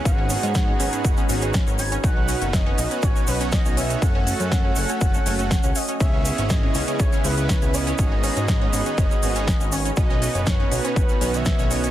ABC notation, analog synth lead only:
X:1
M:4/4
L:1/16
Q:1/4=121
K:G#phr
V:1 name="Analog synth lead"
f12 z2 g2 | f4 d4 c2 B2 d2 e2 | f12- f2 d2 | e4 d4 c2 B4 d2- |
d12- d2 c2 | d4 c3 B4 e3 d2 |]